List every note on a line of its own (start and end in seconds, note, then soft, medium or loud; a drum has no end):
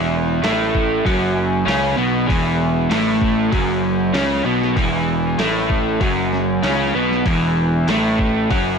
0.00 0.39 E1 medium
0.00 0.42 E2 medium
0.00 0.42 E3 medium
0.42 1.00 A1 medium
0.42 1.03 A2 medium
0.42 1.04 A3 loud
0.42 snare loud
0.42 open hi-hat medium
0.75 kick medium
1.05 1.63 F#1 medium
1.05 1.66 F#2 medium
1.05 1.66 F#3 medium
1.05 kick loud
1.05 open hi-hat medium
1.65 1.95 C#2 medium
1.65 1.96 C#3 loud
1.65 1.96 C#4 loud
1.65 snare loud
1.65 open hi-hat medium
1.97 2.26 B1 medium
1.97 2.27 B2 medium
1.97 2.28 B3 medium
2.27 2.87 E1 medium
2.27 2.89 E2 medium
2.27 2.89 E3 loud
2.27 kick loud
2.27 open hi-hat medium
2.90 3.48 A1 medium
2.90 3.51 A2 loud
2.90 3.52 A3 loud
2.90 snare loud
2.90 open hi-hat medium
3.22 kick medium
3.51 4.11 F#1 medium
3.51 4.13 F#2 medium
3.51 4.13 F#3 loud
3.51 kick loud
3.51 open hi-hat medium
4.13 4.43 C#2 medium
4.13 4.44 C#3 medium
4.13 4.44 C#4 loud
4.13 snare loud
4.13 open hi-hat medium
4.44 4.74 B1 medium
4.44 4.75 B2 medium
4.44 4.76 B3 medium
4.62 snare soft
4.76 5.35 E1 medium
4.76 5.37 E2 medium
4.76 5.38 E3 loud
4.76 kick loud
4.76 open hi-hat medium
5.38 5.97 A1 medium
5.38 6.00 A2 medium
5.38 6.00 A3 loud
5.38 snare loud
5.38 open hi-hat medium
5.70 kick medium
6.00 6.59 F#1 medium
6.00 6.62 F#2 medium
6.00 6.62 F#3 medium
6.00 kick loud
6.00 open hi-hat medium
6.33 snare soft
6.63 6.92 C#2 medium
6.63 6.93 C#3 loud
6.63 6.94 C#4 loud
6.63 snare loud
6.63 open hi-hat medium
6.95 7.23 B1 medium
6.95 7.25 B2 medium
6.95 7.25 B3 medium
7.11 snare soft
7.26 7.84 E1 medium
7.26 7.87 E2 medium
7.26 7.87 E3 medium
7.26 kick loud
7.26 open hi-hat medium
7.88 8.46 A1 medium
7.88 8.49 A2 medium
7.88 8.49 A3 loud
7.88 snare loud
7.88 open hi-hat medium
8.19 kick medium
8.50 8.79 F#1 medium
8.50 8.79 F#2 medium
8.50 8.79 F#3 medium
8.50 kick loud
8.50 open hi-hat medium